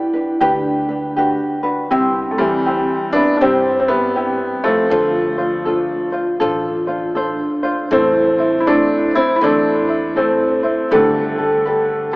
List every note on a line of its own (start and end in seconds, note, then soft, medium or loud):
0.00 0.13 D4 medium
0.00 0.37 E4 medium
0.00 0.13 G4 medium
0.00 0.12 B4 medium
0.00 1.14 D5 medium
0.00 1.14 G5 loud
0.13 0.40 D4 soft
0.13 0.40 B4 medium
0.41 1.39 D2 loud
0.41 0.89 D4 medium
0.41 1.60 D4 medium
0.41 0.88 G4 medium
0.41 0.87 B4 medium
0.89 1.16 D4 soft
0.89 1.16 B4 medium
1.16 1.64 D4 medium
1.16 1.63 F#4 medium
1.16 1.64 G4 medium
1.16 1.62 B4 medium
1.63 1.90 D4 soft
1.63 1.91 F#4 medium
1.63 1.91 B4 medium
1.91 2.89 C2 medium
1.91 2.38 C4 medium
1.91 5.00 C4 medium
1.91 2.39 E4 medium
1.91 2.38 G4 medium
1.91 2.38 C5 medium
2.31 2.39 A3 medium
2.38 3.10 E3 medium
2.38 3.16 G3 loud
2.38 2.65 C4 soft
2.38 2.66 E4 soft
2.38 2.66 C5 soft
2.66 3.14 C4 medium
2.66 3.14 E4 medium
2.66 3.13 G4 medium
2.66 3.14 C5 medium
3.13 3.35 B3 medium
3.13 3.35 D4 loud
3.13 3.41 E4 soft
3.37 3.77 C4 medium
3.37 3.42 D4 medium
3.41 4.39 G2 medium
3.41 3.78 G3 medium
3.41 3.89 C4 medium
3.41 3.88 E4 medium
3.41 3.89 G4 medium
3.41 3.90 C5 medium
3.80 3.88 C4 medium
3.88 4.60 G3 medium
3.88 4.66 B3 medium
3.88 4.15 E4 soft
4.16 4.63 E4 medium
4.16 4.63 G4 medium
4.64 6.10 F3 medium
4.64 6.10 A3 medium
4.64 4.90 C4 soft
4.64 4.90 E4 medium
4.64 4.90 C5 medium
4.90 5.89 D2 loud
4.90 5.38 D4 medium
4.90 5.38 F4 medium
4.90 7.13 F4 medium
4.90 5.38 A4 medium
4.90 5.37 C5 medium
5.38 5.65 D4 soft
5.38 5.65 F4 soft
5.38 5.66 C5 medium
5.65 6.13 D4 medium
5.65 6.12 F4 medium
5.65 6.13 A4 medium
5.65 6.11 C5 medium
6.12 6.39 D4 soft
6.12 6.40 F4 soft
6.12 6.40 C5 medium
6.40 7.39 A1 medium
6.40 6.88 D4 medium
6.40 6.87 F4 medium
6.40 6.88 A4 medium
6.40 6.86 C5 medium
6.87 7.15 D4 soft
6.87 7.15 F4 soft
6.87 7.15 C5 medium
7.15 7.63 D4 medium
7.15 7.87 D4 medium
7.15 7.63 F4 medium
7.15 7.63 A4 medium
7.15 7.62 C5 medium
7.63 7.91 D4 medium
7.63 7.91 F4 medium
7.63 7.90 C5 medium
7.91 8.88 A1 medium
7.91 8.58 A3 medium
7.91 8.38 C4 medium
7.91 8.64 C4 medium
7.91 10.99 E4 medium
7.91 8.38 E4 medium
7.91 8.38 A4 medium
7.91 8.37 C5 medium
8.38 8.66 C4 soft
8.38 8.67 E4 soft
8.38 8.66 C5 soft
8.60 8.66 E4 medium
8.66 9.11 A3 medium
8.66 9.14 C4 medium
8.66 9.10 D4 loud
8.66 9.13 E4 medium
8.66 9.13 A4 medium
8.66 9.12 C5 medium
9.14 9.41 C4 soft
9.14 9.36 C4 medium
9.14 9.41 E4 soft
9.14 9.35 E4 loud
9.14 9.41 C5 soft
9.36 9.41 E4 medium
9.41 10.38 E2 medium
9.41 10.14 A3 medium
9.41 9.89 C4 medium
9.41 10.19 D4 medium
9.41 9.88 E4 medium
9.41 9.88 A4 medium
9.41 9.87 C5 medium
9.88 10.15 C4 soft
9.88 10.16 E4 soft
9.88 10.15 C5 soft
10.16 10.88 A3 medium
10.16 10.63 C4 medium
10.16 10.93 C4 medium
10.16 10.63 E4 medium
10.16 10.62 A4 medium
10.16 10.62 C5 medium
10.63 10.91 C4 soft
10.63 10.91 E4 soft
10.63 10.91 C5 medium
10.91 11.89 G1 loud
10.91 12.11 D3 medium
10.91 12.10 A3 medium
10.91 11.38 D4 medium
10.91 11.38 G4 medium
10.91 12.16 A4 loud
10.91 11.37 A4 medium
10.91 11.38 B4 medium
11.38 11.65 D4 soft
11.38 11.65 G4 soft
11.38 11.66 A4 medium
11.65 12.13 D4 medium
11.65 12.12 G4 medium
11.65 12.11 A4 medium
11.65 12.13 B4 medium
12.13 12.16 A4 soft